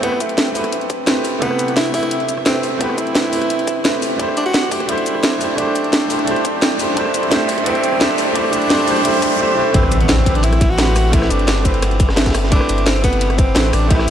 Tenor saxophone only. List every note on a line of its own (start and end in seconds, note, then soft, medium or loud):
0.03 0.22 B3 loud
0.21 0.90 A3 medium
1.42 1.74 B3 medium
1.77 1.93 E4 loud
1.94 2.26 E4 loud
2.46 2.82 C4 medium
2.81 3.00 B3 medium
2.98 4.02 E4 loud
4.37 4.41 D4 medium
4.46 4.73 F#4 loud
4.72 4.91 G4 loud
4.89 5.60 E4 loud
5.58 6.80 D4 medium
7.31 7.64 A3 medium
7.66 8.14 C4 loud
8.35 9.36 D4 loud
9.75 9.99 C4 medium
10.01 10.11 B3 medium
10.09 10.37 C4 loud
10.35 10.45 D4 loud
10.44 10.71 E4 loud
10.70 11.15 F#4 loud
11.13 11.32 E4 loud
11.30 11.67 D4 loud
11.65 12.00 C4 medium
12.52 12.88 D4 medium
12.87 13.03 C4 loud
13.04 13.40 B3 loud
13.38 13.75 C4 loud
13.73 13.90 D4 loud
13.90 14.10 E4 loud